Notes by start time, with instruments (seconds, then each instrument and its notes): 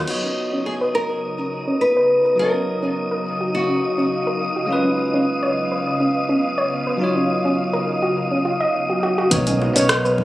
Already playing: tine electric piano F#3 D#4 F4 C#5
0.04 ambient pad C#3 B3 D#4 A#5, tine electric piano B3 D#4, crash
0.09 tine electric piano F#4 C#5, synth texture D#5 D#6
0.24 synth arpeggio sound C#4
0.53 synth arpeggio sound C#4
0.66 nylon-string guitar G#4
0.81 synth arpeggio sound B4
0.95 nylon-string guitar A#4
1.10 synth arpeggio sound A#4
1.39 synth arpeggio sound C#4
1.68 synth arpeggio sound C#4
1.81 nylon-string guitar B4
1.97 synth arpeggio sound B4
2.25 synth arpeggio sound A#4
2.36 tine electric piano F#3 D#4 F5, ambient pad F#3 D#4 F5, nylon-string guitar A#4
2.42 tine electric piano C#5
2.54 synth arpeggio sound C#4
2.83 synth arpeggio sound C#4
3.11 synth arpeggio sound A#4
3.21 nylon-string guitar G#4
3.41 synth arpeggio sound F#4
3.55 nylon-string guitar F#4
3.69 synth arpeggio sound C#4
3.98 synth arpeggio sound C#4
4.27 synth arpeggio sound A#4
4.56 synth arpeggio sound F#4
4.66 tine electric piano G#3 C#4, ambient pad B3
4.70 tine electric piano F4 B4
4.84 synth arpeggio sound C#4
5.14 synth arpeggio sound C#4
5.43 synth arpeggio sound C#5
5.72 synth arpeggio sound B4
6.00 synth arpeggio sound C#4
6.29 synth arpeggio sound C#4
6.58 synth arpeggio sound C#5
6.87 synth arpeggio sound B4
6.97 tine electric piano F#3 D#4 F4, ambient pad F#3 D#4
7.04 tine electric piano C#5
7.16 synth arpeggio sound C#4
7.45 synth arpeggio sound C#4
7.73 synth arpeggio sound A#4
8.02 synth arpeggio sound F#4
8.31 synth arpeggio sound C#4
8.45 synth arpeggio sound F4
8.61 synth arpeggio sound D#5
8.90 synth arpeggio sound F#4
9.03 synth arpeggio sound F#4
9.18 synth arpeggio sound F#4
9.30 fingered electric bass B1, ambient pad C#3 D#4 A#4, tine electric piano B3 D#4 A#4 C#5, synth texture F5 F6, kick, closed hi-hat, high bongo, low conga, shaker
9.47 synth arpeggio sound C#4, closed hi-hat, high conga, shaker
9.62 high bongo
9.73 fingered electric bass B1, tine electric piano B3 D#4, synth arpeggio sound C#4, closed hi-hat, shaker
9.78 tine electric piano A#4 C#5
9.89 cross-stick, closed hi-hat, shaker
10.05 synth arpeggio sound B4, high bongo, shaker
10.18 kick, low conga